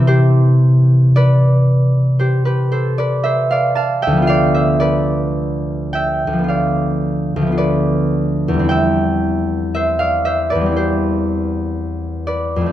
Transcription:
<<
  \new Staff \with { instrumentName = "Harp" } { \time 4/4 \key c \major \tempo 4 = 57 <g' c''>4 <b' d''>4 <g' c''>16 <g' b'>16 <a' c''>16 <b' d''>16 <c'' e''>16 <d'' f''>16 <f'' a''>16 <e'' g''>16 | <d'' f''>16 <c'' e''>16 <b' d''>4 <e'' g''>8 <d'' f''>4 <b' d''>4 | <e'' g''>4 <c'' e''>16 <d'' f''>16 <c'' e''>16 <b' d''>16 <g' c''>4. <b' d''>8 | }
  \new Staff \with { instrumentName = "Harp" } { \clef bass \time 4/4 \key c \major <c e c'>1 | <d, f b f'>2 <d, f b f'>4 <d, f b f'>4 | <e, g c' e'>2 <e, g c' e'>2 | }
>>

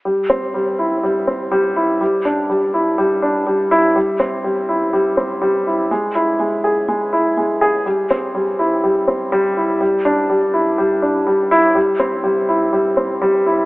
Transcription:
\new Staff \with { instrumentName = "Upright piano" } { \time 4/4 \key c \major \tempo 4 = 123 g8 c'8 g8 e'8 g8 c'8 g8 e'8 | g8 d'8 g8 e'8 g8 d'8 g8 e'8 | g8 c'8 g8 e'8 g8 c'8 g8 e'8 | gis8 e'8 gis8 gis'8 gis8 e'8 gis8 gis'8 |
g8 c'8 g8 e'8 g8 c'8 g8 e'8 | g8 d'8 g8 e'8 g8 d'8 g8 e'8 | g8 c'8 g8 e'8 g8 c'8 g8 e'8 | }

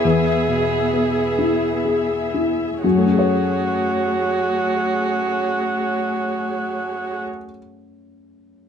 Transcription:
<<
  \new Staff \with { instrumentName = "String section" } { \time 3/4 \key fis \minor \tempo 4 = 61 <b gis' e''>2. | <a gis' cis''>2.~ | <a gis' cis''>2. | }
  \new Staff \with { instrumentName = "Viola" } { \time 3/4 \key fis \minor gis'2~ gis'8 r8 | fis'2.~ | fis'2. | }
  \new Staff \with { instrumentName = "Upright piano" } { \time 3/4 \key fis \minor << { b'2 r4 | <fis, fis a cis' fis' gis' cis''>2.~ | <fis, fis a cis' fis' gis' cis''>2. | } \\ { <e, e'>8 b,8 b8 e'8 gis'8 e'8 | r2. | r2. | } >> }
>>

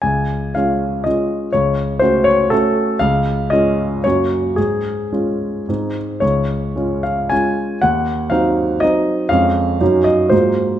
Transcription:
\new Staff \with { instrumentName = "Grand piano" } { \time 3/4 \key des \major \tempo 4 = 117 << { aes''4 f''4 ees''4 | des''4 c''8 des''8 a'4 | f''4 ees''4 des''4 | aes'2~ aes'8 r8 |
des''4. f''8 aes''4 | ges''4 f''4 ees''4 | f''4. ees''8 c''4 | } \\ { des,4 <aes des' f'>4 <aes des' f'>4 | des,4 <a des' ges'>4 <a des' ges'>4 | des,4 <aes des' f'>4 <ges, bes des' ges'>4 | aes,4 <aes des' f'>4 <aes, aes c' ees'>4 |
des,4 <aes des' f'>4 <aes des' f'>4 | ees,4 <ges c' ees'>4 <ges c' ees'>4 | <f, aes des'>4 <ges, ges des' ees'>4 <aes, ges bes f'>4 | } >> }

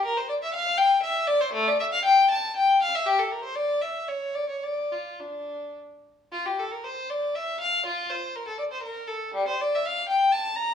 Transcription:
\new Staff \with { instrumentName = "Violin" } { \time 3/4 \key d \minor \tempo 4 = 119 bes'16 c''16 d''16 e''16 f''8 g''8 e''8 d''16 c''16 | a16 d''16 e''16 f''16 g''8 a''8 g''8 f''16 e''16 | g'16 a'16 bes'16 c''16 d''8 e''8 cis''8 d''16 cis''16 | d''8 f'8 d'4 r4 |
f'16 g'16 a'16 bes'16 c''8 d''8 e''8 f''8 | f'8 c''8 bes'16 a'16 d''16 c''16 bes'8 a'8 | g16 c''16 d''16 e''16 f''8 g''8 a''8 bes''8 | }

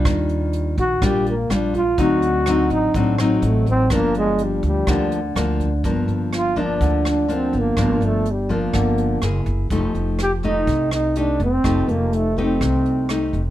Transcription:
<<
  \new Staff \with { instrumentName = "Trombone" } { \time 4/4 \key g \phrygian \tempo 4 = 124 r4. fis'8 g'8 bes8 d'8 f'8 | fis'4. ees'8 d'8 fis8 a8 c'8 | bes8 aes8 g8 g4 r4. | \key g \minor r4 f'8 d'4 d'8 c'8 bes8~ |
bes8 a8 g8 bes2 r8 | r4 g'8 ees'4 ees'8 d'8 c'8~ | c'8 bes8 a8 c'2 r8 | }
  \new Staff \with { instrumentName = "Nylon-string guitar" } { \time 4/4 \key g \phrygian << { <g d' f'>4. r8 <g d' f'>8 r8 <g d' f'>8 r8 | <fis c' ees'>4 <fis c' ees'>4 <fis c' ees'>8 <fis c' ees'>4. | <f bes d'>2 <f bes d'>8 r8 <f bes d'>8 r8 | \key g \minor <f bes d'>4. <f bes d'>4. <f bes d'>4 |
<f bes d'>4 r8 <f bes d'>4. <ais e' gis'>4 | <a ees' g'>4 r8 <a ees' g'>4. <a ees' g'>8 r8 | <a ees' g'>4. <a ees' g'>4. <a ees' g'>8 r8 | } \\ { ees2 bes,2 | d2 a,2 | g,2 d2 | g,2 d2 |
g,2 d4 r4 | f2 c2 | f2 c2 | } >> }
  \new Staff \with { instrumentName = "Upright bass" } { \clef bass \time 4/4 \key g \phrygian ees,4. bes,,8 bes,,4 bes,,4 | d,4. a,,8 a,,4 a,,4 | g,,4. d,8 d,4 d,4 | \key g \minor g,,8 g,,4. d,4. g,,8 |
g,,8 g,,4. g,,4 fis,,8 fis,,8 | f,,8 f,,4. c,4. f,,8 | f,,8 f,,4. c,4. f,,8 | }
  \new DrumStaff \with { instrumentName = "Drums" } \drummode { \time 4/4 <hh bd ss>8 hh8 hh8 <hh bd>8 <hh bd ss>8 hh8 <hh ss>8 <hh bd>8 | <hh bd>8 hh8 <hh ss>8 <hh bd>8 <hh bd>8 <hh ss>8 hh8 <hh bd>8 | <hh bd ss>8 hh8 hh8 <hh bd>8 <hh bd ss>8 hh8 <hh ss>8 <hh bd>8 | <hh bd>8 hh8 <hh ss>8 <hh bd>8 <hh bd>8 <hh ss>8 hh8 <hh bd>8 |
<hh bd ss>8 hh8 hh8 <hh bd>8 <hh bd ss>8 hh8 <hh ss>8 <hh bd>8 | <hh bd>8 hh8 <hh ss>8 <hh bd>8 <hh bd>8 <hh ss>8 hh8 <hh bd>8 | <hh bd ss>8 hh8 hh8 <hh bd>8 <hh bd ss>8 hh8 <hh ss>8 <hh bd>8 | }
>>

